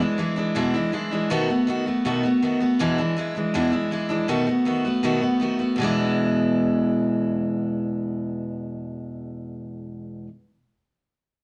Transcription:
0.00 0.17 E3 medium
0.00 0.18 G#3 medium
0.00 0.18 D4 medium
0.00 0.18 E4 medium
0.18 0.37 E3 medium
0.18 0.37 G#3 medium
0.18 0.36 D4 medium
0.18 0.35 E4 medium
0.36 0.55 E3 soft
0.36 0.55 G#3 soft
0.36 0.55 D4 medium
0.36 0.55 E4 medium
0.55 0.74 E2 medium
0.55 0.74 B2 medium
0.55 0.74 E3 medium
0.55 0.74 G#3 medium
0.55 0.73 D4 medium
0.55 0.73 E4 loud
0.74 0.91 E3 medium
0.74 0.92 G#3 medium
0.74 0.93 D4 medium
0.74 0.92 E4 medium
0.92 1.11 E3 medium
0.92 1.11 G#3 medium
0.92 1.11 D4 medium
0.92 1.10 E4 medium
1.11 1.30 E3 soft
1.11 1.31 G#3 medium
1.11 1.30 D4 medium
1.11 1.30 E4 medium
1.30 1.49 B2 loud
1.30 1.49 D#3 loud
1.30 1.49 A3 loud
1.30 1.49 B3 loud
1.30 1.48 F#4 loud
1.49 1.67 A3 medium
1.49 1.68 B3 medium
1.49 1.67 F#4 medium
1.67 1.86 D#3 medium
1.67 1.86 A3 medium
1.67 1.86 B3 medium
1.67 1.85 F#4 medium
1.86 2.04 A3 medium
1.86 2.05 B3 medium
1.86 2.04 F#4 medium
2.05 2.23 B2 medium
2.05 2.24 D#3 medium
2.05 2.24 A3 medium
2.05 2.23 B3 loud
2.05 2.22 F#4 medium
2.23 2.42 A3 medium
2.23 2.42 B3 medium
2.23 2.42 F#4 medium
2.42 2.61 D#3 medium
2.42 2.61 A3 medium
2.42 2.60 B3 medium
2.42 2.59 F#4 medium
2.60 2.80 A3 soft
2.60 2.80 B3 medium
2.60 2.79 F#4 medium
2.79 2.98 E2 medium
2.79 2.98 B2 medium
2.79 2.98 E3 loud
2.79 2.98 G#3 loud
2.79 2.98 D4 loud
2.79 2.97 E4 loud
2.98 3.15 E3 medium
2.98 3.16 G#3 medium
2.98 3.17 D4 medium
2.98 3.16 E4 medium
3.16 3.35 E3 medium
3.16 3.36 G#3 medium
3.16 3.35 D4 medium
3.16 3.34 E4 medium
3.35 3.53 E3 medium
3.35 3.54 G#3 medium
3.35 3.54 D4 medium
3.35 3.54 E4 medium
3.54 3.72 E2 medium
3.54 3.73 B2 medium
3.54 3.73 E3 medium
3.54 3.72 G#3 medium
3.54 3.72 D4 medium
3.54 3.71 E4 loud
3.72 3.90 E3 soft
3.72 3.91 G#3 medium
3.72 3.91 D4 medium
3.72 3.91 E4 medium
3.91 4.10 E3 medium
3.91 4.09 G#3 medium
3.91 4.09 D4 medium
3.91 4.08 E4 medium
4.09 4.28 E3 soft
4.09 4.28 G#3 medium
4.09 4.28 D4 medium
4.09 4.28 E4 medium
4.28 4.47 B2 medium
4.28 4.47 D#3 medium
4.28 4.47 A3 loud
4.28 4.47 B3 loud
4.28 4.46 F#4 loud
4.47 4.65 A3 medium
4.47 4.66 B3 soft
4.47 4.65 F#4 medium
4.65 4.84 D#3 medium
4.65 4.85 A3 medium
4.65 4.85 B3 medium
4.65 4.84 F#4 medium
4.85 5.03 A3 medium
4.85 5.03 B3 medium
4.85 5.03 F#4 medium
5.03 5.22 B2 medium
5.03 5.22 D#3 medium
5.03 5.22 A3 medium
5.03 5.21 B3 loud
5.03 5.20 F#4 medium
5.21 5.40 A3 medium
5.21 5.41 B3 medium
5.21 5.40 F#4 medium
5.40 5.59 D#3 medium
5.40 5.59 A3 medium
5.40 5.59 B3 medium
5.40 5.58 F#4 medium
5.59 5.79 A3 medium
5.59 5.78 B3 medium
5.59 5.78 F#4 medium
5.76 10.25 E2 medium
5.76 10.26 B2 loud
5.76 10.27 E3 medium
5.81 10.28 G#3 loud
5.81 10.29 D4 loud
5.81 10.30 E4 loud

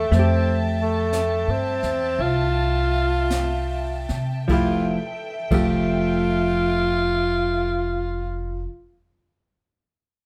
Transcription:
0.00 0.16 A3 medium
0.00 0.15 G4 soft
0.00 4.46 E5 medium
0.00 4.46 G5 medium
0.00 4.45 A5 medium
0.11 1.43 F2 medium
0.11 4.49 A3 soft
0.11 0.62 C4 medium
0.11 brush sweep soft
0.11 snare soft
0.19 4.50 G4 soft
0.82 1.52 A3 medium
1.13 snare soft
1.13 hi-hat pedal soft
1.48 1.80 G2 medium
1.48 2.23 C4 medium
1.83 2.16 E2 medium
1.83 snare soft
2.18 4.05 C2 medium
2.18 4.11 F4 medium
2.18 brush sweep soft
3.30 snare soft
3.30 hi-hat pedal soft
4.09 4.46 C3 medium
4.09 snare soft
4.48 4.95 F1 medium
4.48 4.97 F3 soft
4.48 4.99 A3 soft
4.48 4.99 E4 soft
4.48 4.99 G4 medium
4.48 7.63 A4 medium
4.48 7.62 E5 medium
4.48 7.63 G5 medium
4.48 kick soft
4.48 ride soft
4.53 4.97 F4 medium
5.51 8.65 F1 medium
5.51 8.69 F3 soft
5.51 8.70 A3 medium
5.51 8.68 F4 medium
5.51 8.72 G4 medium
5.51 kick soft
5.51 ride medium

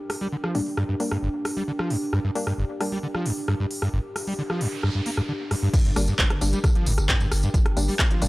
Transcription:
0.00 8.28 D4 medium
0.00 8.28 G4 medium
0.00 8.28 A#4 medium
0.00 5.74 G5 medium
0.10 cross-stick medium
0.10 open hi-hat loud
0.21 0.27 G3 loud
0.32 0.36 D3 medium
0.44 0.56 F3 medium
0.44 cross-stick medium
0.55 0.61 G2 loud
0.55 0.63 G3 medium
0.55 0.63 A#3 medium
0.55 0.63 D4 medium
0.55 open hi-hat medium
0.67 open hi-hat medium
0.77 0.84 G2 loud
0.77 cross-stick medium
0.89 0.95 G2 medium
1.00 1.12 G3 medium
1.00 1.12 A#3 medium
1.00 1.12 D4 loud
1.00 open hi-hat loud
1.12 1.18 G2 medium
1.12 cross-stick medium
1.23 1.29 G1 loud
1.45 cross-stick medium
1.45 open hi-hat loud
1.57 1.63 G3 loud
1.68 1.72 D3 medium
1.79 1.92 F3 medium
1.79 cross-stick medium
1.90 1.97 G2 loud
1.90 open hi-hat medium
2.13 2.19 G2 loud
2.13 cross-stick medium
2.24 2.30 G2 medium
2.35 2.43 G3 medium
2.35 2.43 A#3 medium
2.35 2.43 D4 loud
2.35 open hi-hat medium
2.47 2.53 G2 medium
2.47 cross-stick medium
2.58 2.64 G1 loud
2.81 2.88 G3 medium
2.81 2.88 A#3 medium
2.81 2.88 D4 medium
2.81 cross-stick medium
2.81 open hi-hat loud
2.92 2.98 G3 loud
3.03 3.07 D3 medium
3.15 3.27 F3 medium
3.15 cross-stick medium
3.26 3.32 G2 loud
3.26 open hi-hat loud
3.48 3.54 G2 loud
3.48 cross-stick medium
3.60 3.66 G2 medium
3.71 open hi-hat loud
3.82 3.88 G2 medium
3.82 cross-stick medium
3.93 4.00 G1 loud
3.93 noise sweep medium
4.16 cross-stick medium
4.16 open hi-hat loud
4.27 4.33 G3 loud
4.27 open hi-hat medium
4.38 4.42 D3 medium
4.50 4.63 F3 medium
4.50 cross-stick medium
4.61 4.67 G2 loud
4.61 open hi-hat loud
4.83 4.90 G2 loud
4.83 cross-stick medium
4.95 5.01 G2 medium
5.06 5.10 A#3 medium
5.06 open hi-hat loud
5.17 5.21 G2 loud
5.17 cross-stick medium
5.29 5.32 D3 medium
5.51 5.55 G2 medium
5.51 cross-stick medium
5.51 open hi-hat loud
5.63 5.69 G2 loud
5.74 5.80 G2 loud
5.74 kick loud
5.74 closed hi-hat medium
5.74 crash loud
5.74 tambourine soft
5.85 5.96 G1 medium
5.85 5.91 G2 medium
5.85 closed hi-hat medium
5.96 6.08 G1 loud
5.96 6.04 G3 medium
5.96 6.04 A#3 medium
5.96 6.04 D4 loud
5.96 cross-stick medium
5.96 open hi-hat loud
5.96 tambourine medium
6.08 6.14 G2 medium
6.08 closed hi-hat medium
6.08 tambourine soft
6.19 6.25 G1 loud
6.19 kick loud
6.19 clap loud
6.19 closed hi-hat medium
6.19 tambourine soft
6.30 6.41 G1 medium
6.30 cross-stick medium
6.30 closed hi-hat medium
6.37 8.28 G5 medium
6.41 6.53 G1 loud
6.41 6.49 G3 medium
6.41 6.49 A#3 medium
6.41 6.49 D4 medium
6.41 open hi-hat loud
6.41 tambourine medium
6.53 6.59 G3 loud
6.53 closed hi-hat medium
6.53 tambourine soft
6.64 6.68 D3 medium
6.64 kick loud
6.64 cross-stick medium
6.64 closed hi-hat medium
6.64 tambourine soft
6.75 6.86 G1 medium
6.75 6.88 F3 medium
6.75 closed hi-hat medium
6.86 6.97 G1 loud
6.86 6.93 G2 loud
6.86 open hi-hat loud
6.86 tambourine medium
6.98 7.09 G1 medium
6.98 cross-stick medium
6.98 closed hi-hat medium
6.98 tambourine soft
7.09 7.15 G2 loud
7.09 kick loud
7.09 clap loud
7.09 closed hi-hat medium
7.09 tambourine soft
7.20 7.31 G1 medium
7.20 7.27 G2 medium
7.20 closed hi-hat medium
7.20 tambourine soft
7.32 7.43 G1 loud
7.32 cross-stick medium
7.32 open hi-hat loud
7.32 tambourine medium
7.43 7.49 G2 medium
7.43 closed hi-hat medium
7.43 tambourine soft
7.54 7.60 G1 loud
7.54 kick loud
7.54 closed hi-hat medium
7.54 tambourine soft
7.66 7.76 G1 medium
7.66 cross-stick medium
7.66 closed hi-hat medium
7.77 7.88 G1 loud
7.77 7.84 G3 medium
7.77 7.84 A#3 medium
7.77 7.84 D4 medium
7.77 open hi-hat loud
7.77 tambourine medium
7.88 7.94 G3 loud
7.88 open hi-hat medium
7.88 tambourine soft
7.99 8.03 D3 medium
7.99 kick loud
7.99 cross-stick medium
7.99 clap loud
7.99 tambourine soft
8.11 8.21 G1 medium
8.11 8.23 F3 medium
8.11 closed hi-hat medium
8.22 8.28 G1 loud
8.22 8.28 G2 loud
8.22 8.28 G3 medium
8.22 8.28 A#3 medium
8.22 8.28 D4 loud
8.22 open hi-hat loud
8.22 tambourine medium

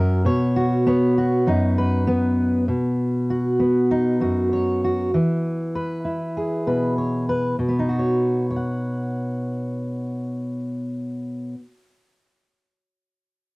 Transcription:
0.00 0.25 F#2 medium
0.00 0.28 C#4 medium
0.00 0.56 F#4 medium
0.00 0.22 A#4 medium
0.25 1.47 B2 medium
0.25 0.86 C#5 medium
0.56 1.17 F#4 medium
0.87 2.06 B3 medium
0.87 1.78 C#5 medium
1.18 2.65 F#4 medium
1.47 2.68 F#2 medium
1.47 2.65 D#4 medium
1.78 2.65 B4 medium
2.07 2.65 B3 medium
2.68 4.21 B2 medium
3.30 4.20 F#4 medium
3.60 5.14 B3 medium
3.91 5.09 D#4 medium
4.21 5.13 F#2 soft
4.21 4.82 F#4 soft
4.53 5.10 C#5 medium
4.84 5.10 F#4 medium
5.14 7.59 E3 medium
5.75 6.66 B4 soft
6.05 7.55 E4 soft
6.37 7.55 G#4 soft
6.67 7.55 B2 soft
6.67 6.97 B4 soft
6.98 7.28 C#5 soft
7.29 7.55 B4 soft
7.59 11.54 B2 soft
7.69 11.59 B3 soft
7.79 11.64 D#4 soft
7.89 8.50 F#4 soft
7.99 8.51 C#5 soft
8.51 11.54 C#5 soft
8.56 11.57 F#5 soft

